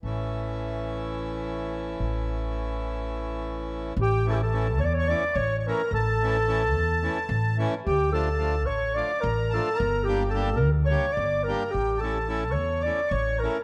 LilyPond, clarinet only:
\new Staff \with { instrumentName = "Clarinet" } { \time 7/8 \tempo 4 = 108 r2. r8 | r2. r8 | g'8 a'32 g'32 a'8. cis''32 d''32 cis''16 d''8 cis''16. cis''32 bes'8 | a'2. r8 |
g'8 a'4 cis''8 d''8 bes'8 a'8 | bes'8 g'8 a'8 bes'8 cis''8 d''8 bes'8 | g'8 a'4 cis''8 d''8 cis''8 bes'16. r32 | }